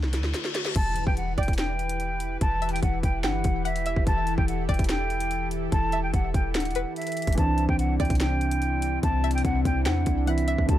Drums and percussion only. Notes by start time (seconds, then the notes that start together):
0.03 snare
0.13 snare, closed hi-hat
0.24 snare
0.34 snare, closed hi-hat
0.45 snare
0.55 snare, closed hi-hat
0.65 snare
0.76 kick, closed hi-hat, crash
0.96 closed hi-hat
1.07 kick
1.17 closed hi-hat
1.38 kick, closed hi-hat
1.43 closed hi-hat
1.48 kick, closed hi-hat
1.53 closed hi-hat
1.58 finger snap, snare, closed hi-hat
1.79 closed hi-hat
1.89 closed hi-hat
2.00 closed hi-hat
2.20 closed hi-hat
2.41 kick, closed hi-hat
2.62 closed hi-hat
2.69 closed hi-hat
2.76 closed hi-hat
2.83 kick, closed hi-hat
3.03 kick, closed hi-hat
3.24 finger snap, snare, closed hi-hat
3.44 kick, closed hi-hat
3.65 closed hi-hat
3.76 closed hi-hat
3.86 closed hi-hat
3.96 kick
4.07 kick, closed hi-hat
4.27 closed hi-hat
4.38 kick
4.48 closed hi-hat
4.69 kick, closed hi-hat
4.74 closed hi-hat
4.79 kick, closed hi-hat
4.84 closed hi-hat
4.89 finger snap, snare, closed hi-hat
5.10 closed hi-hat
5.20 closed hi-hat
5.31 closed hi-hat
5.51 closed hi-hat
5.72 kick, closed hi-hat
5.92 closed hi-hat
6.14 kick, closed hi-hat
6.34 kick, closed hi-hat
6.55 finger snap, snare, closed hi-hat
6.60 closed hi-hat
6.65 closed hi-hat
6.71 closed hi-hat
6.75 closed hi-hat
6.96 closed hi-hat
7.02 closed hi-hat
7.07 closed hi-hat
7.12 closed hi-hat
7.17 closed hi-hat, open hi-hat
7.22 closed hi-hat
7.27 kick, closed hi-hat
7.33 closed hi-hat
7.38 kick, closed hi-hat
7.58 closed hi-hat
7.69 kick
7.79 closed hi-hat
8.00 kick, closed hi-hat
8.05 closed hi-hat
8.10 kick, closed hi-hat
8.15 closed hi-hat
8.20 finger snap, snare, closed hi-hat
8.41 closed hi-hat
8.51 closed hi-hat
8.62 closed hi-hat
8.82 closed hi-hat
9.03 kick, closed hi-hat
9.24 closed hi-hat
9.31 closed hi-hat
9.38 closed hi-hat
9.45 kick, closed hi-hat
9.65 kick, closed hi-hat
9.86 finger snap, snare, closed hi-hat
10.06 kick, closed hi-hat
10.27 closed hi-hat
10.38 closed hi-hat
10.48 closed hi-hat
10.58 kick
10.69 kick, closed hi-hat